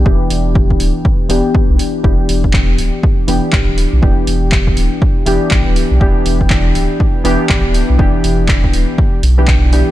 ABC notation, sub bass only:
X:1
M:4/4
L:1/16
Q:"Swing 16ths" 1/4=121
K:Em
V:1 name="Sub bass" clef=bass
E,,, z E,,,4 D,,, z3 E,,, z2 B,,, z2 | E,,, z E,,,4 D,,, z3 E,,, z A,,, D,,,2 B,,, | E,,, z E,,,4 D,,, z3 E,,, z A,,, D,,,2 B,,, | E,,, z E,,,4 D,,, z3 E,,, z A,,, D,,,2 B,,, |
E,,, z E,,,4 D,,, z3 B,,,4- B,,, z |]